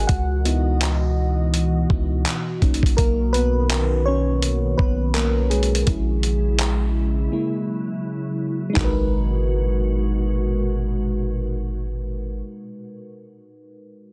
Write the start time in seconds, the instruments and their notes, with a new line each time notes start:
Already playing: fm electric piano D#4 F#4 G#4 D5 D#5 F#5 G#5, ambient pad F#4
0.07 808-style bass C#2, ambient pad B2 E3 D#5, fm electric piano F#4 F#5, kick, closed hi-hat
0.45 fm electric piano B3 D#4 E4 F#4, closed hi-hat
0.81 clap, closed hi-hat
1.54 closed hi-hat
1.90 808-style bass C#2, fm electric piano B3 D#4 E4 F#4, kick
2.26 clap, closed hi-hat
2.62 808-style bass B1, ambient pad D#3, fm electric piano A#3 C#4 D#4, kick, closed hi-hat
2.74 closed hi-hat
2.83 808-style bass B1, kick, closed hi-hat
2.97 808-style bass B1, fm electric piano A#3 A#4, kick, closed hi-hat
3.33 fm electric piano B3 B4, closed hi-hat
3.70 clap, closed hi-hat
4.06 fm electric piano C#4 C#5
4.42 closed hi-hat
4.78 808-style bass B1, fm electric piano B3 B4, kick
5.14 fm electric piano A#3 A#4, clap, closed hi-hat
5.50 fm electric piano G#3 G#4, closed hi-hat
5.63 closed hi-hat
5.75 closed hi-hat
5.87 808-style bass A#1, ambient pad C#3 G#3 E4, fm electric piano G#3 C#4 E4, kick, closed hi-hat
6.23 closed hi-hat
6.59 clap, closed hi-hat
7.32 ambient pad F#3, fm electric piano G#3 A#3 E4
8.70 fm electric piano G#3 D#4
8.76 808-style bass G#1, ambient pad A#2 B2 G#3 F#4, fm electric piano F#4, kick, clap, floor tom
8.81 fm electric piano A#4 B4